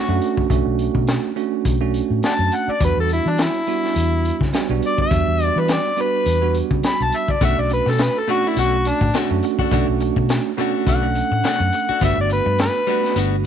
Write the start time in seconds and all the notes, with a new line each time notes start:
Already playing: F#4
0.08 F#2 A3 C#4 D4 F#4
0.22 closed hi-hat
0.37 muted fingered electric bass stroke, kick
0.50 B1 A3 C#4 D4 F#4, kick, closed hi-hat
0.66 B1
0.79 closed hi-hat
0.95 B2, kick
1.07 snare, closed hi-hat
1.36 A3 C#4 D4 F#4, closed hi-hat
1.65 B1, kick, closed hi-hat
1.81 A3 C#4 D4 F#4
1.94 closed hi-hat
2.10 A2
2.23 D5 F#5 A5, snare, closed hi-hat
2.39 F#2
2.52 F#5, closed hi-hat
2.68 D5, muted fingered electric bass stroke
2.80 E2 G3 B3 D4 F#4 B4, kick, closed hi-hat
2.97 E2 A4
3.09 E4, closed hi-hat
3.26 E3 D4
3.38 E4, snare, closed hi-hat
3.67 G3 B3 D4 F#4, closed hi-hat
3.84 snare
3.96 E2, closed hi-hat
4.25 closed hi-hat
4.41 C#3, kick, snare
4.53 G3 B3 D4 F#4, snare, closed hi-hat
4.69 B1 G3 B3 D4 F#4
4.83 D5, closed hi-hat
4.98 E5, muted fingered electric bass stroke, kick
5.11 E2 G3 B3 D4 F#4, kick, closed hi-hat
5.27 E2
5.40 closed hi-hat
5.45 D5
5.56 E3 B4
5.68 snare, closed hi-hat
5.73 D5
5.97 G3 B3 D4 F#4, closed hi-hat
6.01 B4
6.26 E2, closed hi-hat
6.42 G3 B3 D4 F#4
6.55 closed hi-hat
6.71 C#3, kick
6.83 B5, snare, closed hi-hat
7.00 B1 A5
7.12 E5, closed hi-hat
7.28 D5, muted fingered electric bass stroke, kick
7.41 B1 B2 A3 C#4 D4 F#4 E5, kick, closed hi-hat
7.58 B1 D5, muted clean electric guitar stroke
7.70 B4, muted clean electric guitar stroke, closed hi-hat
7.86 B2 A4, muted clean electric guitar stroke, snare
7.98 B4, muted clean electric guitar stroke, snare, closed hi-hat
8.19 A4
8.27 B2 A3 C#4 D4 F#4, closed hi-hat
8.44 A3 D4 E4 F#4
8.56 B1 B2 A3 D4 F#4, closed hi-hat
8.85 D4, muted clean electric guitar stroke, closed hi-hat
9.01 A2, muted clean electric guitar stroke, kick
9.14 B2 A3 C#4 D4 F#4, snare, closed hi-hat
9.30 F#2 A3 C#4 D4 F#4, muted clean electric guitar stroke
9.43 muted clean electric guitar stroke, closed hi-hat
9.59 A3 D4 F#4, muted fingered electric bass stroke, kick
9.71 B1 B2 A3 C#4 D4 F#4, kick, closed hi-hat
9.88 B1, muted clean electric guitar stroke
10.00 muted clean electric guitar stroke, closed hi-hat
10.16 B2, muted clean electric guitar stroke, kick
10.29 muted clean electric guitar stroke, snare, closed hi-hat
10.57 B2 A3 C#4 D4 F#4, closed hi-hat
10.74 A3 D4 F#4
10.87 B1 B2 A3 D4 F#4 F#5, kick, closed hi-hat
11.02 A3 C#4 D4 A4
11.15 muted clean electric guitar stroke, closed hi-hat
11.31 A2, muted clean electric guitar stroke
11.44 B2 A3 D4 F#4, snare, closed hi-hat
11.60 F#2, muted clean electric guitar stroke
11.73 muted clean electric guitar stroke, closed hi-hat
11.89 A3 D4 F#4, muted fingered electric bass stroke
12.01 G1 G3 A3 B3 D4 F#4 E5, kick, closed hi-hat
12.17 G1 D5, muted clean electric guitar stroke
12.30 B4, muted clean electric guitar stroke, closed hi-hat
12.46 G2, muted clean electric guitar stroke
12.59 B4, muted clean electric guitar stroke, snare, closed hi-hat
12.87 G3 A3 B3 D4 F#4, closed hi-hat
13.03 B3 D4 F#4, snare
13.16 G1 G3 B3 D4 F#4, closed hi-hat